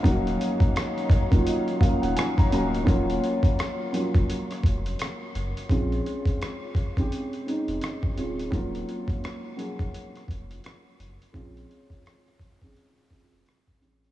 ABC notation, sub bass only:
X:1
M:4/4
L:1/16
Q:"Swing 16ths" 1/4=85
K:Ebm
V:1 name="Sub bass" clef=bass
E,,,2 z4 z F,,, z3 E,,, z2 =D,,,2 | E,,,2 z4 z F,,, z2 F,,,2 z2 G,,, z | B,,,2 z4 z =G,,, z3 F,,, z2 =D,,,2 | E,,,2 z4 z F,,, z2 F,,,2 z2 G,,, z |
B,,,2 z4 z =G,,, z3 F,,, z2 =A,,,2 |]